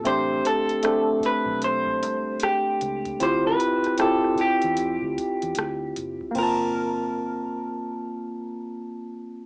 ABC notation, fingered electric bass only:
X:1
M:4/4
L:1/16
Q:"Swing 16ths" 1/4=76
K:Gdor
V:1 name="Fingered electric bass" clef=bass
A,,,2 z4 z =B,,,3 C,,2 z2 ^C,,2 | D,,2 z4 z E,, F,, D,, z E,, D,,2 ^F,,, z | G,,,16 |]